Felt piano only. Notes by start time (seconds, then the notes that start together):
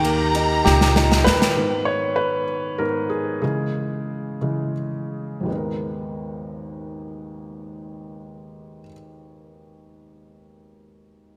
Already playing: D#3
0.05 A#3
0.35 D#4
0.65 A#2 G4
0.96 D#4
1.24 A#4 B4
1.56 G#2 D#3 B3
1.85 C#5
2.16 B4
2.78 G#2 D#3 B3 A#4
3.10 G#4
3.42 C#3 E3 G#3 G#4
4.41 C#3 E3 G#3
5.40 G#1 D#2
5.46 G#3 B3
5.52 D#4 A#4